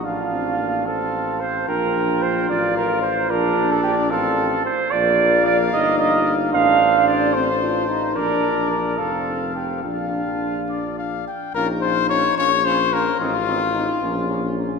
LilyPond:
<<
  \new Staff \with { instrumentName = "Trumpet" } { \time 6/8 \key bes \major \tempo 4. = 73 f''4. f''4. | g''4. f''4. | d''4. f''4 r8 | f''2. |
c''2. | d''4. f''4. | f''4. d''8 f''8 g''8 | \key bes \minor bes'8 c''8 des''8 des''8 c''8 bes'8 |
f'2~ f'8 r8 | }
  \new Staff \with { instrumentName = "Flugelhorn" } { \time 6/8 \key bes \major f'4. a'4 c''8 | bes'4 c''8 d''8 bes'8 c''8 | bes'8. a'16 g'8 a'4 c''8 | d''4 d''8 ees''8 ees''8. r16 |
f''4 d''8 c''8 r4 | bes'4 bes'8 a'4 g'8 | f'2~ f'8 r8 | \key bes \minor f'8 f'8 f'8 f'8 f'8 f'8 |
ees'8 ees'8 ees'8 des'8 des'8 des'8 | }
  \new Staff \with { instrumentName = "French horn" } { \time 6/8 \key bes \major d'8 c'8 bes8 c'4. | d'4. f'4.~ | f'2~ f'8 r8 | f'4. ees'4. |
d'4. c'8 f'8 ees'8 | d'4. c'4. | d'2~ d'8 r8 | \key bes \minor ees'4. des'4. |
c'8 f'8 ees'8 des'4. | }
  \new Staff \with { instrumentName = "Trombone" } { \time 6/8 \key bes \major d'4. c'4. | f'2. | d'4. c'4 r8 | bes2. |
d'4. c'8 d'8 ees'8 | d'4. c'4. | d'2~ d'16 r8. | \key bes \minor des'8 des'8 des'8 des'8 des'8 des'8 |
c'8 c'8 c'8 bes8 bes8 bes8 | }
  \new Staff \with { instrumentName = "Bass trombone" } { \clef bass \time 6/8 \key bes \major a,,2. | bes,,4. a,,4. | bes,,4. a,,4 r8 | bes,,4. g,,4. |
a,,2. | bes,,4. f,,4. | bes,,2~ bes,,8 r8 | \key bes \minor bes,,4. bes,,4. |
a,,4. bes,,4. | }
>>